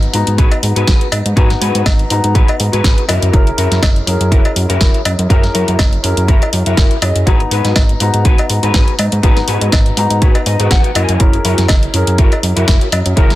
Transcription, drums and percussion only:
0.03 closed hi-hat soft
0.14 open hi-hat loud
0.27 closed hi-hat medium
0.38 kick loud
0.38 closed hi-hat medium
0.52 closed hi-hat soft
0.52 cowbell medium
0.63 open hi-hat loud
0.76 closed hi-hat medium
0.87 kick loud
0.87 snare loud
0.87 closed hi-hat medium
1.01 closed hi-hat soft
1.12 open hi-hat loud
1.12 cowbell medium
1.26 closed hi-hat medium
1.37 kick loud
1.37 closed hi-hat soft
1.50 snare soft
1.50 closed hi-hat soft
1.62 open hi-hat loud
1.75 closed hi-hat medium
1.86 kick loud
1.86 snare loud
1.86 closed hi-hat medium
1.86 cowbell loud
1.99 closed hi-hat soft
2.10 open hi-hat loud
2.24 closed hi-hat medium
2.35 kick loud
2.35 closed hi-hat soft
2.48 closed hi-hat soft
2.48 cowbell medium
2.60 open hi-hat loud
2.73 closed hi-hat soft
2.84 kick loud
2.84 snare loud
2.84 closed hi-hat soft
2.98 closed hi-hat soft
3.09 open hi-hat loud
3.09 cowbell medium
3.22 closed hi-hat medium
3.33 kick loud
3.33 closed hi-hat soft
3.47 closed hi-hat soft
3.58 open hi-hat loud
3.72 snare soft
3.72 closed hi-hat soft
3.83 kick loud
3.83 snare loud
3.83 closed hi-hat medium
3.83 cowbell loud
3.96 closed hi-hat soft
4.07 open hi-hat loud
4.21 closed hi-hat soft
4.32 kick loud
4.32 closed hi-hat soft
4.45 closed hi-hat soft
4.45 cowbell medium
4.56 open hi-hat loud
4.70 closed hi-hat soft
4.81 kick loud
4.81 snare loud
4.81 closed hi-hat soft
4.94 closed hi-hat soft
5.05 open hi-hat loud
5.05 cowbell medium
5.19 closed hi-hat soft
5.30 kick loud
5.30 closed hi-hat soft
5.43 snare soft
5.43 closed hi-hat soft
5.55 open hi-hat loud
5.68 closed hi-hat soft
5.79 kick loud
5.79 snare loud
5.79 closed hi-hat soft
5.79 cowbell medium
5.93 closed hi-hat soft
6.04 open hi-hat loud
6.17 closed hi-hat medium
6.28 kick loud
6.28 closed hi-hat soft
6.42 closed hi-hat soft
6.42 cowbell medium
6.53 open hi-hat loud
6.66 closed hi-hat soft
6.77 kick loud
6.77 snare loud
6.77 closed hi-hat soft
6.91 closed hi-hat soft
7.02 open hi-hat loud
7.02 cowbell loud
7.16 closed hi-hat soft
7.27 kick loud
7.27 closed hi-hat soft
7.40 closed hi-hat soft
7.51 open hi-hat loud
7.65 snare soft
7.65 closed hi-hat soft
7.76 kick loud
7.76 snare loud
7.76 closed hi-hat soft
7.76 cowbell medium
7.89 closed hi-hat soft
8.00 open hi-hat loud
8.14 closed hi-hat soft
8.25 kick loud
8.25 closed hi-hat medium
8.38 closed hi-hat soft
8.38 cowbell medium
8.50 open hi-hat loud
8.63 closed hi-hat soft
8.74 kick loud
8.74 snare loud
8.74 closed hi-hat medium
8.88 closed hi-hat soft
8.99 open hi-hat loud
8.99 cowbell medium
9.12 closed hi-hat soft
9.23 kick loud
9.23 closed hi-hat soft
9.37 snare soft
9.37 closed hi-hat soft
9.48 open hi-hat loud
9.61 closed hi-hat soft
9.72 kick loud
9.72 snare loud
9.72 closed hi-hat medium
9.72 cowbell medium
9.86 closed hi-hat soft
9.97 open hi-hat medium
10.10 closed hi-hat medium
10.22 kick loud
10.22 closed hi-hat medium
10.35 closed hi-hat soft
10.35 cowbell medium
10.46 open hi-hat loud
10.60 closed hi-hat soft
10.71 kick loud
10.71 snare loud
10.71 closed hi-hat soft
10.84 closed hi-hat soft
10.95 open hi-hat loud
10.95 cowbell medium
11.09 closed hi-hat medium
11.20 kick loud
11.20 closed hi-hat medium
11.33 closed hi-hat soft
11.45 open hi-hat loud
11.58 snare soft
11.58 closed hi-hat medium
11.68 kick loud
11.68 snare loud
11.68 closed hi-hat medium
11.68 cowbell medium
11.83 closed hi-hat soft
11.94 open hi-hat medium
12.07 closed hi-hat medium
12.18 kick loud
12.18 closed hi-hat medium
12.32 closed hi-hat soft
12.32 cowbell medium
12.43 open hi-hat medium
12.57 closed hi-hat medium
12.68 kick loud
12.68 snare loud
12.68 closed hi-hat medium
12.81 closed hi-hat soft
12.92 open hi-hat medium
12.92 cowbell medium
13.06 closed hi-hat medium
13.17 kick loud
13.17 closed hi-hat medium
13.30 snare soft
13.30 closed hi-hat soft

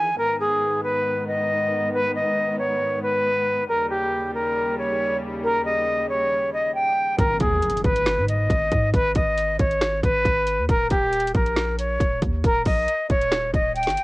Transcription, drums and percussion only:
7.19 kick loud
7.19 closed hi-hat medium
7.40 kick medium
7.40 closed hi-hat medium
7.62 closed hi-hat medium
7.70 closed hi-hat medium
7.77 closed hi-hat medium
7.84 kick medium
7.84 closed hi-hat soft
7.96 closed hi-hat medium
8.06 finger snap loud
8.06 snare loud
8.06 closed hi-hat medium
8.28 closed hi-hat medium
8.50 kick loud
8.50 closed hi-hat medium
8.72 kick medium
8.72 closed hi-hat medium
8.94 kick loud
8.94 closed hi-hat medium
9.15 kick medium
9.15 closed hi-hat medium
9.38 closed hi-hat medium
9.59 kick medium
9.59 closed hi-hat medium
9.71 closed hi-hat soft
9.81 finger snap loud
9.81 snare loud
9.81 closed hi-hat medium
10.03 kick loud
10.03 closed hi-hat medium
10.25 kick loud
10.25 closed hi-hat medium
10.47 closed hi-hat medium
10.69 kick loud
10.69 closed hi-hat medium
10.90 kick medium
10.90 closed hi-hat medium
11.13 closed hi-hat medium
11.20 closed hi-hat medium
11.27 closed hi-hat medium
11.35 kick medium
11.35 closed hi-hat soft
11.46 closed hi-hat medium
11.56 finger snap loud
11.56 snare loud
11.56 closed hi-hat medium
11.79 closed hi-hat medium
12.00 kick loud
12.00 closed hi-hat medium
12.22 kick medium
12.22 closed hi-hat medium
12.44 kick loud
12.44 closed hi-hat medium
12.66 kick medium
12.66 open hi-hat medium
12.88 closed hi-hat medium
13.10 kick medium
13.10 closed hi-hat medium
13.21 closed hi-hat medium
13.32 finger snap loud
13.32 snare loud
13.32 closed hi-hat medium
13.54 kick medium
13.54 closed hi-hat medium
13.75 closed hi-hat soft
13.83 closed hi-hat medium
13.87 snare medium
13.87 closed hi-hat medium
13.97 closed hi-hat medium

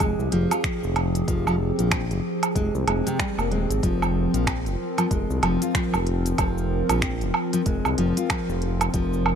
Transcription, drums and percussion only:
0.00 kick loud
0.00 closed hi-hat medium
0.00 low woodblock medium
0.00 shaker medium
0.20 shaker soft
0.32 closed hi-hat medium
0.51 closed hi-hat soft
0.51 low woodblock medium
0.51 shaker medium
0.64 finger snap loud
0.64 kick loud
0.64 closed hi-hat medium
0.64 shaker medium
0.84 shaker soft
0.96 closed hi-hat soft
0.96 low woodblock medium
1.15 closed hi-hat soft
1.15 shaker medium
1.28 kick loud
1.28 closed hi-hat medium
1.28 shaker medium
1.47 low woodblock medium
1.47 shaker soft
1.79 closed hi-hat soft
1.79 shaker medium
1.91 finger snap loud
1.91 kick loud
1.91 closed hi-hat medium
1.91 low woodblock medium
1.91 shaker medium
2.11 closed hi-hat soft
2.11 shaker soft
2.43 closed hi-hat soft
2.43 low woodblock medium
2.43 shaker medium
2.55 kick loud
2.55 closed hi-hat medium
2.55 shaker medium
2.75 shaker soft
2.88 closed hi-hat medium
2.88 low woodblock medium
3.07 closed hi-hat soft
3.07 shaker medium
3.19 finger snap loud
3.19 kick loud
3.19 closed hi-hat medium
3.19 shaker medium
3.39 low woodblock medium
3.39 shaker soft
3.52 closed hi-hat soft
3.71 closed hi-hat soft
3.71 shaker medium
3.83 kick loud
3.83 closed hi-hat medium
3.83 shaker medium
4.02 low woodblock medium
4.02 shaker soft
4.34 closed hi-hat soft
4.34 shaker medium
4.47 finger snap loud
4.47 kick loud
4.47 closed hi-hat medium
4.47 low woodblock medium
4.47 shaker medium
4.66 closed hi-hat soft
4.66 shaker soft
4.98 closed hi-hat soft
4.98 low woodblock medium
4.98 shaker medium
5.11 kick loud
5.11 closed hi-hat medium
5.11 shaker medium
5.31 shaker soft
5.43 closed hi-hat medium
5.43 low woodblock medium
5.62 closed hi-hat soft
5.62 shaker medium
5.75 finger snap loud
5.75 kick loud
5.75 closed hi-hat medium
5.75 shaker medium
5.94 low woodblock medium
5.94 shaker soft
6.07 closed hi-hat soft
6.26 closed hi-hat soft
6.26 shaker medium
6.38 kick loud
6.38 closed hi-hat medium
6.38 low woodblock medium
6.38 shaker medium
6.58 shaker soft
6.89 closed hi-hat soft
6.89 low woodblock medium
6.89 shaker medium
7.02 finger snap loud
7.02 kick loud
7.02 closed hi-hat medium
7.02 shaker medium
7.21 closed hi-hat soft
7.21 shaker soft
7.34 low woodblock medium
7.53 closed hi-hat soft
7.53 shaker medium
7.66 kick loud
7.66 closed hi-hat medium
7.66 shaker medium
7.85 low woodblock medium
7.85 shaker soft
7.98 closed hi-hat medium
8.17 closed hi-hat soft
8.17 shaker medium
8.30 finger snap loud
8.30 kick loud
8.30 closed hi-hat medium
8.30 low woodblock medium
8.30 shaker medium
8.50 shaker soft
8.62 closed hi-hat soft
8.81 closed hi-hat soft
8.81 low woodblock medium
8.81 shaker medium
8.94 kick loud
8.94 closed hi-hat medium
8.94 shaker medium
9.13 shaker soft
9.26 low woodblock medium

